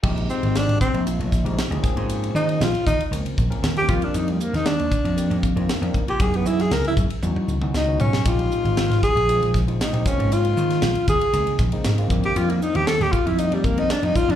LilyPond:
<<
  \new Staff \with { instrumentName = "Tenor saxophone" } { \time 4/4 \key f \dorian \tempo 4 = 117 r8 c'8 d'8 c'8 r2 | r8 ees'8 f'8 ees'8 r4 r16 g'16 f'16 d'16 | ees'16 g16 bes16 ees'16 d'4. r4 r16 g'16 | aes'16 ces'16 fes'16 aes'16 bes'16 fes'16 r4. ees'8 des'8 |
f'4. aes'4 r8 ees'8 des'8 | f'4. aes'4 r4 r16 g'16 | f'16 bes16 ees'16 g'16 a'16 g'16 f'16 e'16 ees'16 g16 bes16 ees'16 d'16 ees'16 f'16 d'16 | }
  \new Staff \with { instrumentName = "Tine electric piano" } { \time 4/4 \key f \dorian <f aes c' ees' g'>4.~ <f aes c' ees' g'>16 r16 <f aes c' ees' f'>8. <f aes c' ees' g'>8 <f aes c' ees' aes'>16 <f bes c' des' aes'>8~ | <f bes c' des' aes'>4~ <f bes c' des' aes'>16 r8. <f bes c' des' bes'>8. <f bes c' des' bes'>8 <f bes c' des' bes'>16 <ees bes c' d' g'>8~ | <ees bes c' d' g'>4~ <ees bes c' d' g'>16 r8. <ees bes c' d' g'>8. <ees bes c' d' f'>8 <ees bes c' d' bes'>8 <d' g'>16 | <fes ces' des' ees' aes'>4.~ <fes ces' des' ees' aes'>16 r16 <fes ces' des' ees' ges'>8. <fes ces' des' ees' ges'>8 <fes ces' des' ees' ges'>8 r16 |
<f aes c' ees' g'>4.~ <f aes c' ees' g'>16 r16 <f aes c' ees' f'>8. <f aes c' ees' f'>8 <f aes c' ees' g'>16 <des aes bes c' f'>8~ | <des aes bes c' f'>4~ <des aes bes c' f'>16 r8. <des aes bes c' ees'>8. <des aes bes c' ees'>8 <des aes bes c' f'>16 <ees g bes c' d'>8~ | <ees g bes c' d'>4~ <ees g bes c' d'>16 r8. <ees g bes c' ees'>8. <ees g bes c' ees'>8 <ees g bes c' ees'>8 r16 | }
  \new Staff \with { instrumentName = "Slap bass" } { \clef bass \time 4/4 \key f \dorian bes,,8 r16 aes,,8 aes,,16 r16 bes,,8 bes,,8 bes,,16 r16 d,16 r16 aes,16~ | aes,8 ees8 bes,,16 r16 ees,16 r16 des,16 r16 bes,,16 r16 ees,8 f,16 r16 | f,8 r16 ees,8 ees,16 r16 f,8 f,8 f,16 r16 f,16 r16 bes,16 | ges,8 ges8 des,16 r16 ges,16 r16 fes,16 r16 des,16 r16 des,8 ces,8 |
bes,,8 r16 aes,,8 aes,,16 r16 bes,,8 bes,,8 bes,,16 r16 bes,,16 r16 aes,16~ | aes,8 ees8 bes,,16 r16 ees,16 r16 des,16 r16 bes,,16 r16 aes,8 f,16 r16 | f,8 r16 ees,8 ees,16 r16 f,8 f,8 f,16 r16 f,16 r16 f,16 | }
  \new DrumStaff \with { instrumentName = "Drums" } \drummode { \time 4/4 <cymc bd>16 cymr16 hhp16 cymr16 <hhp cymr sn>16 cymr16 <hhp bd>16 cymr16 <hhp cymr>16 cymr16 <hhp bd sn>16 cymr16 <hhp cymr sn>16 cymr16 <hhp bd sn>16 cymr16 | <hhp cymr>16 cymr16 hhp16 cymr16 <hhp cymr sn>16 cymr16 <hhp bd>16 cymr16 <hhp cymr>16 cymr16 <hhp bd>16 cymr16 <hhp cymr sn>16 cymr16 <hhp bd sn>16 cymr16 | <hhp cymr>16 cymr16 hhp16 <cymr sn>16 <hhp cymr sn>16 cymr16 <hhp bd>16 cymr16 <hhp cymr>16 cymr16 <hhp bd>16 cymr16 <hhp cymr sn>16 cymr16 <hhp bd>16 cymr16 | <hhp bd cymr>16 cymr16 hhp16 <cymr sn>16 <hhp cymr sn>16 cymr16 <hhp bd>16 cymr16 <hhp tommh>16 tommh16 hhp16 toml16 <hhp sn>8 <hhp tomfh>16 sn16 |
<hhp bd cymr>16 cymr16 hhp16 cymr16 <hhp cymr sn>16 <cymr sn>16 <hhp bd>16 cymr16 <hhp cymr>16 cymr16 <hhp bd sn>16 cymr16 <hhp cymr sn>16 cymr16 <hhp bd sn>16 cymr16 | <hhp cymr>16 cymr16 hhp16 <cymr sn>16 <hhp cymr sn>16 cymr16 <hhp bd>16 cymr16 <hhp cymr>16 cymr16 <hhp bd sn>16 cymr16 <hhp cymr sn>16 cymr16 <hhp bd>16 cymr16 | <hhp cymr>16 cymr16 hhp16 cymr16 <hhp cymr sn>16 <cymr sn>16 <hhp bd>16 cymr16 <hhp cymr>16 cymr16 <hhp bd>16 cymr16 <hhp cymr sn>16 cymr16 <hhp bd>16 cymr16 | }
>>